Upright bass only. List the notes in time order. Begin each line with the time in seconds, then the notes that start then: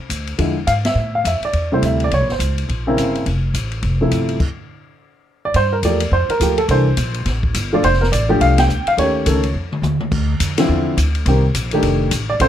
0.10 D2
0.38 E2
0.67 G#2
0.95 A2
1.24 F2
1.41 muted upright bass stroke
1.53 E2
1.82 D2
2.11 C2
2.20 A#1
2.30 G1
2.39 C#2
2.69 A#1
2.97 G1
3.26 F1
3.54 A1
3.83 F1
4.11 G1
5.54 G2
5.83 E2
6.11 F2
6.29 muted upright bass stroke
6.40 D2
6.68 C2
6.97 A#1
7.26 A1
7.54 G1
7.83 F1
8.12 A1
8.40 C2
8.68 D2
8.86 muted upright bass stroke
8.97 D#2
9.26 C#2
9.54 F2
9.82 D#2
10.11 D2
10.40 F2
10.69 E2
10.97 D2
11.26 C2
11.54 A#1
11.83 F1
12.11 A1
12.40 A#1